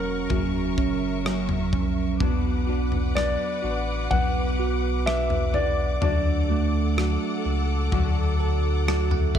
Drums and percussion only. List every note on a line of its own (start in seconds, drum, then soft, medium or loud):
0.30 kick medium
0.30 floor tom medium
0.78 kick medium
1.26 cross-stick loud
1.49 floor tom medium
1.73 kick medium
1.73 floor tom medium
2.20 kick medium
2.20 floor tom medium
2.92 floor tom soft
3.17 cross-stick medium
4.11 kick medium
4.11 floor tom medium
5.07 cross-stick loud
5.30 floor tom medium
5.54 floor tom medium
6.02 floor tom medium
6.98 cross-stick loud
7.92 kick medium
7.92 floor tom medium
8.88 cross-stick loud
9.11 floor tom medium
9.35 kick medium
9.35 floor tom medium